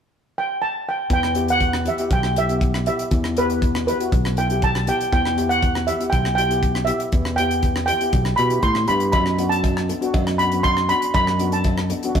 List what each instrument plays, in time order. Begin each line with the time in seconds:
0.38 steel pan G5
0.62 steel pan A5
0.89 steel pan G5
1.10 fingered electric bass E2, steel pan G5, kick, closed hi-hat
1.23 cross-stick
1.35 steel pan B3 E4 G4, closed hi-hat
1.48 steel pan F#5, closed hi-hat
1.61 kick, closed hi-hat
1.73 cross-stick
1.85 steel pan B3 E4 G4 E5, closed hi-hat
1.98 steel pan B3 E4 G4, closed hi-hat
2.11 fingered electric bass B1, steel pan G5, kick, closed hi-hat
2.23 cross-stick
2.36 steel pan B3 E4 G4 E5, closed hi-hat
2.49 steel pan B3 E4 G4, closed hi-hat
2.61 kick, closed hi-hat
2.74 cross-stick
2.86 steel pan B3 E4 G4 E5, closed hi-hat
2.99 closed hi-hat
3.11 fingered electric bass E2, kick, closed hi-hat
3.24 cross-stick
3.37 steel pan B3 E4 G4 B4, closed hi-hat
3.50 closed hi-hat
3.62 kick, closed hi-hat
3.75 cross-stick
3.86 steel pan B3 E4 G4 B4, closed hi-hat
3.99 steel pan B3 E4 F#4, closed hi-hat
4.12 fingered electric bass B1, kick, closed hi-hat
4.25 cross-stick
4.37 steel pan B3 E4 A4 G5, closed hi-hat
4.50 steel pan B3 E4 G4, closed hi-hat
4.62 steel pan A5, kick, closed hi-hat
4.75 cross-stick
4.87 steel pan B3 E4 G4 G5, closed hi-hat
5.01 closed hi-hat
5.13 fingered electric bass E2, steel pan G5, kick, closed hi-hat
5.25 cross-stick
5.37 steel pan B3 E4 G4, closed hi-hat
5.49 steel pan F#5, closed hi-hat
5.63 kick, closed hi-hat
5.75 cross-stick
5.87 steel pan B3 E4 G4 E5, closed hi-hat
6.00 steel pan B3 E4 G4, closed hi-hat
6.10 fingered electric bass B1, steel pan G5, kick, closed hi-hat
6.25 cross-stick
6.35 steel pan B3 E4 G4 G5, closed hi-hat
6.49 steel pan B3 E4 G4, closed hi-hat
6.63 kick, closed hi-hat
6.75 cross-stick
6.85 steel pan B3 E4 G4 E5, closed hi-hat
7.00 closed hi-hat
7.12 fingered electric bass E2, kick, closed hi-hat
7.25 cross-stick
7.36 steel pan B3 E4 G4 G5, closed hi-hat
7.51 closed hi-hat
7.63 kick, closed hi-hat
7.76 cross-stick
7.86 steel pan B3 E4 G4 G5, closed hi-hat
8.01 steel pan B3 E4 G4, closed hi-hat
8.13 fingered electric bass B1, kick, closed hi-hat
8.25 cross-stick
8.36 fingered electric bass B2, steel pan B3 E4 G4 B5, closed hi-hat
8.50 steel pan B3 E4 G4, closed hi-hat
8.62 fingered electric bass A2, steel pan C6, kick, closed hi-hat
8.75 cross-stick
8.87 fingered electric bass G2, steel pan B3 E4 G4 B5, closed hi-hat
9.00 closed hi-hat
9.12 fingered electric bass F#2, steel pan B5, kick, closed hi-hat, cowbell
9.26 cross-stick
9.37 steel pan B3 D4 F#4, closed hi-hat
9.49 steel pan A5, closed hi-hat
9.64 kick, closed hi-hat, cowbell
9.77 cross-stick
9.89 steel pan B3 D4 A4, closed hi-hat
10.01 steel pan B3 D4 F#4, closed hi-hat
10.14 fingered electric bass F#2, kick, closed hi-hat, cowbell
10.27 cross-stick
10.38 steel pan B3 D4 F#4 B5, closed hi-hat
10.52 steel pan B3 D4 F#4, closed hi-hat
10.63 steel pan C6, kick, closed hi-hat, cowbell
10.77 cross-stick
10.89 steel pan B3 D4 F#4 B5, closed hi-hat
11.02 closed hi-hat
11.14 fingered electric bass F#2, steel pan B5, kick, closed hi-hat, cowbell
11.27 cross-stick
11.39 steel pan B3 D4 F#4, closed hi-hat
11.52 steel pan A5, closed hi-hat
11.64 kick, closed hi-hat, cowbell
11.78 cross-stick
11.89 steel pan B3 D4 A4, closed hi-hat
12.03 steel pan B3 D4 F#4, closed hi-hat
12.15 fingered electric bass F#2, kick, closed hi-hat, cowbell